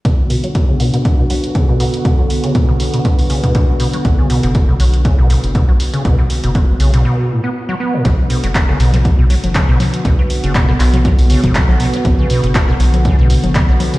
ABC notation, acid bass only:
X:1
M:4/4
L:1/16
Q:"Swing 16ths" 1/4=120
K:Bm
V:1 name="Acid bass" clef=bass
B,, z B,, F, z C, B,, B,, z B,, F, z C, B,, B,, z | B,, F, z C, B,, B,, z B,, F, z C, B,, B,, z B,, F, | z C, B,, B,, z B,, F, z C, B,, B,, z B,, F, z C, | B,, B,, z B,, F, z C, B,, B,,2 A,, B, z F, B, A,, |
B,, z B,, F, z C, B,, B,, z B,, F, z C, B,, B,, z | B,, F, z C, B,, B,, z B,, F, z C, B,, B,, z B,, F, | z C, B,, B,, z B,, F, z C, B,, B,, z B,, F, z C, |]